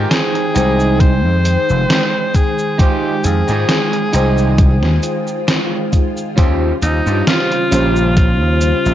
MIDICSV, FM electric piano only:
0, 0, Header, 1, 2, 480
1, 0, Start_track
1, 0, Key_signature, -4, "minor"
1, 0, Tempo, 895522
1, 1498, Time_signature, 4, 2, 24, 8
1, 4792, End_track
2, 0, Start_track
2, 0, Title_t, "FM electric piano"
2, 0, Program_c, 0, 5
2, 0, Note_on_c, 0, 56, 80
2, 0, Note_on_c, 0, 63, 89
2, 0, Note_on_c, 0, 72, 99
2, 0, Note_on_c, 0, 79, 81
2, 267, Note_off_c, 0, 63, 0
2, 269, Note_off_c, 0, 79, 0
2, 272, Note_off_c, 0, 56, 0
2, 275, Note_off_c, 0, 72, 0
2, 289, Note_on_c, 0, 63, 97
2, 294, Note_on_c, 0, 79, 86
2, 301, Note_on_c, 0, 56, 90
2, 306, Note_on_c, 0, 72, 104
2, 1467, Note_off_c, 0, 63, 0
2, 1470, Note_off_c, 0, 79, 0
2, 1473, Note_off_c, 0, 56, 0
2, 1476, Note_off_c, 0, 72, 0
2, 1493, Note_on_c, 0, 63, 78
2, 1498, Note_on_c, 0, 79, 71
2, 1503, Note_on_c, 0, 56, 73
2, 1508, Note_on_c, 0, 72, 89
2, 2189, Note_off_c, 0, 63, 0
2, 2191, Note_off_c, 0, 79, 0
2, 2194, Note_off_c, 0, 56, 0
2, 2197, Note_off_c, 0, 72, 0
2, 2211, Note_on_c, 0, 63, 85
2, 2216, Note_on_c, 0, 79, 85
2, 2223, Note_on_c, 0, 56, 83
2, 2229, Note_on_c, 0, 72, 97
2, 3388, Note_off_c, 0, 63, 0
2, 3391, Note_off_c, 0, 79, 0
2, 3394, Note_off_c, 0, 56, 0
2, 3397, Note_off_c, 0, 72, 0
2, 3409, Note_on_c, 0, 61, 90
2, 3413, Note_on_c, 0, 65, 84
2, 3419, Note_on_c, 0, 67, 85
2, 3423, Note_on_c, 0, 72, 97
2, 4107, Note_off_c, 0, 61, 0
2, 4109, Note_off_c, 0, 65, 0
2, 4112, Note_off_c, 0, 67, 0
2, 4114, Note_off_c, 0, 72, 0
2, 4133, Note_on_c, 0, 61, 99
2, 4137, Note_on_c, 0, 65, 87
2, 4143, Note_on_c, 0, 67, 85
2, 4148, Note_on_c, 0, 72, 105
2, 4792, Note_off_c, 0, 61, 0
2, 4792, Note_off_c, 0, 65, 0
2, 4792, Note_off_c, 0, 67, 0
2, 4792, Note_off_c, 0, 72, 0
2, 4792, End_track
0, 0, End_of_file